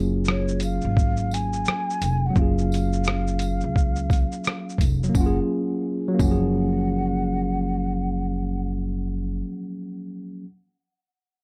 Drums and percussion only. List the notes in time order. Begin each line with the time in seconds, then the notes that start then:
0.25 cross-stick, shaker
0.48 shaker
0.60 closed hi-hat, tambourine, shaker
0.81 shaker
0.97 kick, shaker
1.17 shaker
1.31 closed hi-hat, tambourine, shaker
1.53 shaker
1.65 cross-stick, shaker
1.90 shaker
2.02 closed hi-hat, tambourine, shaker
2.36 kick, shaker
2.58 shaker
2.72 closed hi-hat, tambourine, shaker
2.93 shaker
3.04 cross-stick, shaker
3.27 shaker
3.39 closed hi-hat, tambourine, shaker
3.60 shaker
3.76 kick, shaker
3.96 shaker
4.10 kick, closed hi-hat, tambourine, shaker
4.32 shaker
4.44 cross-stick, shaker
4.69 shaker
4.78 kick, closed hi-hat, tambourine, shaker
5.03 shaker
5.15 kick, tambourine
6.19 kick, tambourine